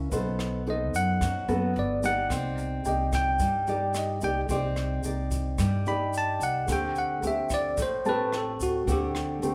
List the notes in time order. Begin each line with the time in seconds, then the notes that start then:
Already playing: E5
0.11 B1 B3 D#4 A4 C5, kick, closed hi-hat, shaker
0.39 cross-stick, closed hi-hat, shaker
0.66 D#4 A4 C5 D#5, closed hi-hat
0.94 F#2 F#5, closed hi-hat, shaker
1.21 F#2 F#3, kick, cross-stick, closed hi-hat, shaker
1.48 F#2 B3 F#4 A4, closed hi-hat, shaker
1.76 G1 D5, closed hi-hat
2.03 D#4 G4 D5 F#5, closed hi-hat, shaker
2.30 C2 C4, kick, cross-stick, closed hi-hat, shaker
2.58 closed hi-hat, shaker
2.85 C2 D#4 G4 D5 D#5 G5, closed hi-hat, shaker
3.12 G5, kick, cross-stick, closed hi-hat, shaker
3.39 G2 G3, kick, closed hi-hat, shaker
3.67 D#4 G4 D5, closed hi-hat, shaker
3.94 D#5, cross-stick, closed hi-hat, shaker
4.21 C2 D#4 G4 D5 G5, closed hi-hat, shaker
4.49 C2 C4 D#4 G4 D5, kick, closed hi-hat, shaker
4.76 cross-stick, closed hi-hat, shaker
5.04 C2 D#4 G4 D5, closed hi-hat, shaker
5.31 kick, closed hi-hat, shaker
5.58 G2 G3, kick, cross-stick, closed hi-hat, shaker
5.86 D#4 G4 D5 B5, closed hi-hat, shaker
6.13 closed hi-hat, shaker
6.18 A5
6.40 C2 F#5, closed hi-hat, shaker
6.68 D2 D3 A3 C4 G4, kick, cross-stick, closed hi-hat, shaker
6.72 G5
6.96 F#5, closed hi-hat, shaker
7.22 D2 A3 C4 G4, closed hi-hat, shaker
7.27 E5
7.50 kick, cross-stick, closed hi-hat, shaker
7.54 D5
7.77 A1 A2, kick, closed hi-hat, shaker
7.82 C5
8.05 A3 C4 G4 B4 A5, closed hi-hat, shaker
8.32 cross-stick, closed hi-hat
8.38 A4
8.60 D2 F#4, closed hi-hat, shaker
8.87 D2 D3 A3 C4 G4, kick, closed hi-hat, shaker
8.92 G4
9.15 cross-stick, closed hi-hat, shaker
9.42 D2 A3 C4 G4, closed hi-hat, shaker